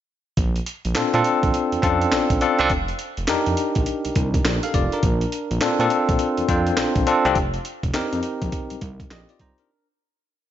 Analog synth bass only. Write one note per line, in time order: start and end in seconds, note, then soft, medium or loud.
0.37 0.60 A#1 loud
0.85 0.93 A#1 medium
0.96 1.03 A#2 soft
1.14 1.22 A#2 loud
1.43 1.51 A#1 medium
1.72 1.77 F2 soft
1.83 2.05 F2 medium
2.12 2.20 A#1 soft
2.30 2.39 A#1 medium
2.59 2.68 C2 medium
2.70 2.92 F1 loud
3.18 3.26 F1 medium
3.29 3.36 F2 soft
3.47 3.55 F2 loud
3.76 3.84 A#1 medium
4.05 4.10 C2 soft
4.16 4.38 C2 medium
4.45 4.59 A#1 loud
4.74 4.88 F1 medium
5.03 5.25 A#1 loud
5.51 5.59 A#1 medium
5.61 5.69 A#2 soft
5.79 5.88 A#2 loud
6.09 6.17 A#1 medium
6.38 6.42 F2 soft
6.49 6.71 F2 medium
6.78 6.85 A#1 soft
6.96 7.04 A#1 loud
7.25 7.33 C2 medium
7.36 7.58 F1 loud
7.83 7.92 F1 medium
7.95 8.02 F2 soft
8.13 8.21 F2 loud
8.42 8.50 A#1 medium
8.71 8.76 C2 soft
8.82 9.04 C2 medium
9.12 9.25 A#1 medium
9.40 9.54 C2 medium